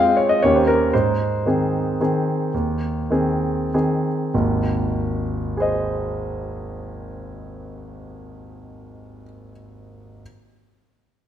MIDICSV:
0, 0, Header, 1, 2, 480
1, 0, Start_track
1, 0, Key_signature, -4, "major"
1, 0, Tempo, 510638
1, 871, Time_signature, 3, 2, 24, 8
1, 1362, Tempo, 555556
1, 2802, Tempo, 616016
1, 6642, Tempo, 597015
1, 9242, End_track
2, 0, Start_track
2, 0, Title_t, "Grand piano"
2, 0, Program_c, 0, 0
2, 0, Note_on_c, 0, 56, 32
2, 0, Note_on_c, 0, 60, 33
2, 0, Note_on_c, 0, 65, 35
2, 0, Note_on_c, 0, 77, 61
2, 156, Note_on_c, 0, 73, 43
2, 162, Note_off_c, 0, 77, 0
2, 274, Note_off_c, 0, 73, 0
2, 275, Note_on_c, 0, 75, 50
2, 365, Note_off_c, 0, 56, 0
2, 369, Note_off_c, 0, 60, 0
2, 370, Note_off_c, 0, 65, 0
2, 393, Note_off_c, 0, 75, 0
2, 400, Note_on_c, 0, 73, 56
2, 412, Note_on_c, 0, 39, 42
2, 412, Note_on_c, 0, 51, 31
2, 418, Note_on_c, 0, 61, 27
2, 423, Note_on_c, 0, 67, 30
2, 516, Note_off_c, 0, 73, 0
2, 524, Note_on_c, 0, 72, 35
2, 581, Control_c, 0, 64, 127
2, 634, Note_on_c, 0, 70, 51
2, 638, Note_off_c, 0, 72, 0
2, 843, Note_off_c, 0, 51, 0
2, 847, Note_off_c, 0, 61, 0
2, 849, Note_off_c, 0, 67, 0
2, 867, Note_off_c, 0, 39, 0
2, 873, Note_off_c, 0, 70, 0
2, 879, Control_c, 0, 64, 0
2, 879, Note_on_c, 0, 72, 50
2, 890, Note_on_c, 0, 44, 34
2, 1060, Control_c, 0, 64, 127
2, 1357, Note_off_c, 0, 44, 0
2, 1370, Note_on_c, 0, 51, 28
2, 1380, Note_on_c, 0, 60, 28
2, 1384, Note_on_c, 0, 68, 33
2, 1802, Note_off_c, 0, 51, 0
2, 1807, Note_off_c, 0, 60, 0
2, 1808, Note_off_c, 0, 68, 0
2, 1843, Note_on_c, 0, 51, 29
2, 1845, Control_c, 0, 64, 0
2, 1848, Note_on_c, 0, 60, 29
2, 1852, Note_on_c, 0, 68, 33
2, 2282, Note_off_c, 0, 51, 0
2, 2285, Note_off_c, 0, 60, 0
2, 2286, Note_off_c, 0, 68, 0
2, 2306, Note_on_c, 0, 39, 34
2, 2500, Control_c, 0, 64, 127
2, 2785, Note_off_c, 0, 39, 0
2, 2792, Note_on_c, 0, 51, 29
2, 2801, Note_on_c, 0, 60, 29
2, 2803, Note_on_c, 0, 68, 31
2, 3246, Note_off_c, 0, 51, 0
2, 3250, Note_off_c, 0, 60, 0
2, 3251, Note_off_c, 0, 68, 0
2, 3288, Note_on_c, 0, 60, 27
2, 3291, Note_on_c, 0, 68, 31
2, 3292, Note_on_c, 0, 51, 28
2, 3293, Control_c, 0, 64, 0
2, 3535, Note_off_c, 0, 72, 0
2, 3744, Note_off_c, 0, 60, 0
2, 3746, Note_off_c, 0, 68, 0
2, 3747, Note_off_c, 0, 51, 0
2, 3756, Note_on_c, 0, 39, 32
2, 3758, Note_on_c, 0, 32, 35
2, 3963, Control_c, 0, 64, 127
2, 4717, Note_on_c, 0, 68, 29
2, 4741, Note_on_c, 0, 72, 28
2, 4752, Note_on_c, 0, 75, 32
2, 7593, Note_off_c, 0, 39, 0
2, 7595, Note_off_c, 0, 32, 0
2, 7812, Note_off_c, 0, 68, 0
2, 7824, Note_off_c, 0, 72, 0
2, 7830, Note_off_c, 0, 75, 0
2, 8392, Control_c, 0, 64, 0
2, 9242, End_track
0, 0, End_of_file